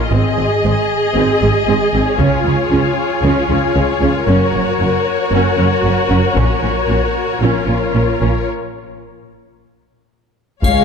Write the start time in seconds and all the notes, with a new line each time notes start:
Already playing: F4
0.11 G#1 G#2 C4 G#4 D#5
0.38 G#1 G#2 C4
0.64 G#1 G#2 C4
1.15 G#1 G#2 C4
1.41 G#1 G#2 C4
1.67 G#1 G#2 C4
1.94 G#1 G#2 C4
2.19 C#2 C#3 C#4 F4 C#5, taiko
2.45 C#2 C#3 C#4
2.71 C#2 C#3 C#4
3.23 C#2 C#3 C#4
3.49 C#2 C#3 C#4
3.76 C#2 C#3 C#4
4.02 C#2 C#3 C#4
4.27 F#1 F#2 C#4 F#4 A#4
4.53 F#1 F#2 C#4
4.80 F#1 F#2 C#4
5.31 F#1 F#2 C#4
5.58 F#1 F#2 C#4
5.84 F#1 F#2 C#4
6.10 F#1 F#2 C#4
6.36 A#1 A#2 C#4 C#5, taiko
6.63 A#1 A#2 C#4
6.89 A#1 A#2 C#4
7.41 A#1 A#2 C#4 F4
7.66 A#1 A#2 C#4
7.94 A#1 A#2 C#4
8.21 A#1 A#2 C#4
10.63 C#2 G#3 G#4 C#5 F5, taiko, triangle